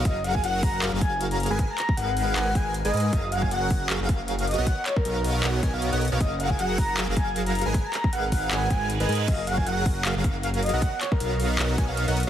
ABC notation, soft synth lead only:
X:1
M:4/4
L:1/16
Q:"Swing 16ths" 1/4=156
K:F#
V:1 name="Soft synth lead"
d2 f g f2 a2 z2 g2 z a a z | z a3 f2 f4 g2 z d3 | d2 f g f2 z8 d2 | f f c A3 z8 z2 |
d2 f g f2 a2 z2 g2 z a a z | z a3 f2 f4 g2 z d3 | d2 f g f2 z8 d2 | f f c A3 z8 z2 |]